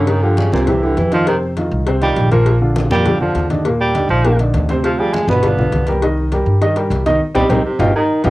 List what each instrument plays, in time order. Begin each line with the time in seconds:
Already playing: upright bass G2, grand piano C#3 C#4 C#5
0.07 baritone saxophone D#3, cowbell, high conga
0.23 baritone saxophone D3, grand piano F3 F4 G4, high conga
0.37 baritone saxophone C#3, cowbell, high conga
0.52 upright bass C2, baritone saxophone A#2, grand piano C3 C4 C5, high conga
0.67 baritone saxophone C3, grand piano E3 E4 G4, cowbell, high conga, low conga
0.83 baritone saxophone D3, grand piano E3 E4 G4, high conga
0.97 upright bass F2, baritone saxophone E3, cowbell, high conga
1.12 grand piano D#3 D#4 F4, baritone saxophone F3, cowbell, high conga
1.27 grand piano C3 C4 C5, baritone saxophone D#3, cowbell, high conga
1.43 high conga
1.57 grand piano D#3 D#4 F4, cowbell, high conga
1.71 upright bass C2
1.87 grand piano C3 C4 C5, cowbell, high conga
2.02 grand piano D#3 D#4 F4, baritone saxophone G3, cowbell, high conga
2.16 upright bass A#1, cowbell, high conga
2.31 grand piano A#2 A#3 A#4, baritone saxophone F3, cowbell, high conga
2.46 cowbell, high conga
2.61 grand piano D3 D4 F4, high conga
2.76 cowbell, high conga
2.91 upright bass F2, grand piano A#2 A#3 A#4, baritone saxophone G3, high conga
3.05 grand piano D3 D4 F4, cowbell, high conga, low conga
3.20 upright bass F2, grand piano D3 D4 F4, baritone saxophone F3, high conga
3.35 upright bass D#2, cowbell, high conga
3.50 grand piano D3 D4 D#4, cowbell, high conga
3.65 grand piano A#2 A#3 A#4, cowbell, high conga
3.80 baritone saxophone G3, high conga
3.95 grand piano D3 D4 D#4, cowbell, high conga
4.09 upright bass A#1, baritone saxophone F3
4.25 grand piano A#2 A#3 A#4, cowbell
4.39 grand piano D3 D4 D#4, cowbell, high conga
4.54 upright bass D2, cowbell, high conga
4.69 grand piano C3 C4 C5, cowbell, high conga
4.84 baritone saxophone F3, cowbell, high conga
4.99 grand piano F3 F4 G#4, baritone saxophone G3, high conga
5.14 baritone saxophone G#3, cowbell, high conga
5.28 upright bass G1, grand piano B2 B3 B4, baritone saxophone B3, high conga
5.43 grand piano D3 D4 F4, cowbell, high conga, low conga
5.57 upright bass B1, grand piano D3 D4 F4, high conga, low conga
5.72 upright bass C2, cowbell, high conga
5.87 grand piano G3 G4 A#4, cowbell, high conga
6.02 grand piano D#3 D#4 D#5, cowbell, high conga
6.18 high conga
6.32 grand piano G3 G4 A#4, cowbell, high conga
6.46 upright bass G2
6.61 grand piano D#3 D#4 D#5, cowbell, high conga
6.76 grand piano G3 G4 A#4, cowbell, high conga
6.90 upright bass C2, cowbell, high conga
7.06 grand piano D#3 D#4 D#5, cowbell, high conga
7.34 upright bass C2, baritone saxophone G3, grand piano C4 D#4 G4, cowbell, low conga
7.49 upright bass C2, baritone saxophone D#3, grand piano C4 D#4 G4, cowbell, low conga
7.65 baritone saxophone C3
7.79 upright bass G1, baritone saxophone B2, grand piano D#4 F4 G4, cowbell, low conga
7.95 baritone saxophone D#3, trombone D#4
8.24 upright bass G1, baritone saxophone B2, trombone B3, grand piano D#4 F4 G4, cowbell, low conga